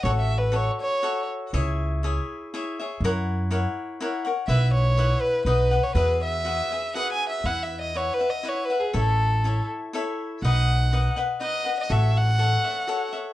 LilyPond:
<<
  \new Staff \with { instrumentName = "Violin" } { \time 3/4 \key e \major \tempo 4 = 121 \tuplet 3/2 { cis''8 e''8 b'8 } cis''16 r16 cis''4 r8 | r2. | r2. | e''8 cis''4 b'8 b'8. cis''16 |
b'8 e''4. \tuplet 3/2 { fis''8 gis''8 e''8 } | \tuplet 3/2 { fis''8 e''8 dis''8 cis''8 b'8 dis''8 cis''8 b'8 gis'8 } | a'4. r4. | fis''4. r8 dis''8. dis''16 |
e''8 fis''2 r8 | }
  \new Staff \with { instrumentName = "Cavaquinho" } { \time 3/4 \key e \major <fis' a' cis'' e''>4 <fis' a' cis'' e''>4 <fis' a' cis'' e''>4 | <e' gis' cis'' e''>4 <e' gis' cis'' e''>4 <e' gis' cis'' e''>8 <gis' cis'' e''>8 | <e' ais' cis'' fis''>4 <e' ais' cis'' fis''>4 <e' ais' cis'' fis''>8 <ais' cis'' fis''>8 | <e' b' e'' fis''>4 <e' b' e'' fis''>4 <dis' b' dis'' fis''>8 <b' dis'' fis''>8 |
<fis' gis' b' e''>4 <fis' gis' b' e''>8 <gis' b' e''>8 <fis' gis' b' e''>4 | <e' b' e'' fis''>4 <e' b' e'' fis''>8 <b' e'' fis''>8 <e' b' e'' fis''>8 <b' e'' fis''>8 | <e' a' cis'' e''>4 <e' a' cis'' e''>4 <e' a' cis'' e''>4 | <dis' b' dis'' fis''>4 <dis' b' dis'' fis''>8 <b' dis'' fis''>8 <dis' b' dis'' fis''>8 <b' dis'' fis''>8 |
<fis' a' cis'' e''>4 <fis' a' cis'' e''>8 <a' cis'' e''>8 <fis' a' cis'' e''>8 <a' cis'' e''>8 | }
  \new Staff \with { instrumentName = "Upright bass" } { \clef bass \time 3/4 \key e \major a,,2 r4 | cis,2 r4 | fis,2 r4 | b,,2 b,,4 |
e,2 r4 | e,2 r4 | a,,2 r4 | b,,2 r4 |
a,,2 r4 | }
>>